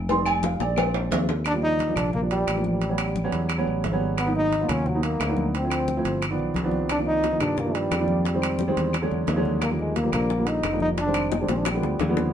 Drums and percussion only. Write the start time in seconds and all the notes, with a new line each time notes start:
0.09 cowbell, high conga, low agogo
0.26 high conga, low agogo, claves
0.43 cowbell, high bongo, high conga, low timbale
0.60 high bongo, low agogo
0.76 cowbell, low bongo, high conga, high timbale, low agogo, claves
0.94 high conga, high timbale
1.12 cowbell, high conga, low timbale, low agogo
1.29 cowbell, low bongo, high conga, low timbale
1.45 high conga, high timbale, claves
1.62 high conga
1.79 high conga, high timbale
1.96 high conga, low conga, high timbale, claves
2.13 high conga, low conga
2.30 high conga, high timbale
2.47 high conga, high timbale, claves
2.64 high conga
2.81 high conga, high timbale
2.98 high timbale, claves
3.16 high conga
3.32 high timbale
3.49 high conga, high timbale, claves
3.67 high conga
3.84 high conga, high timbale, low timbale
4.18 high conga, high timbale, claves
4.35 high conga
4.52 high conga, high timbale
4.69 high conga, low conga, high timbale, claves
4.86 high conga, low conga
5.03 high timbale
5.20 high conga, high timbale, low timbale, claves
5.37 high conga
5.55 high timbale
5.70 high conga, high timbale, claves
5.88 high conga
6.05 high conga, high timbale
6.21 high conga, high timbale, claves
6.38 high conga
6.54 high conga, high timbale
6.71 high conga
6.89 high bongo, high conga, high timbale, claves
7.05 high conga
7.23 high bongo, high conga, high timbale
7.40 high bongo, high conga, low conga, high timbale, claves
7.57 high bongo, high conga, low conga
7.74 high bongo, high conga, high timbale
7.91 high bongo, low bongo, high conga, high timbale, claves
8.08 high conga
8.25 high bongo, high conga, high timbale
8.42 high conga, high timbale, claves
8.59 high bongo, high conga
8.77 high bongo, high timbale
8.93 high bongo, high conga, high timbale, claves
9.10 high bongo, high conga
9.27 high bongo, low bongo, high conga, high timbale, low timbale
9.45 high conga
9.61 high bongo, high conga, high timbale, claves
9.79 high conga
9.96 high bongo, high conga, high timbale
10.12 high bongo, high conga, low conga, high timbale, claves
10.30 high bongo, high conga
10.46 high bongo, high conga, high timbale
10.63 high bongo, low bongo, high conga, high timbale, claves
10.80 high conga
10.97 high bongo, high conga, high timbale
11.14 high conga, high timbale, claves
11.32 high bongo, high conga
11.48 high bongo, high conga, high timbale
11.65 high bongo, high conga, high timbale, claves
11.83 low bongo, high conga
11.99 low bongo, high conga, high timbale
12.17 low bongo, high conga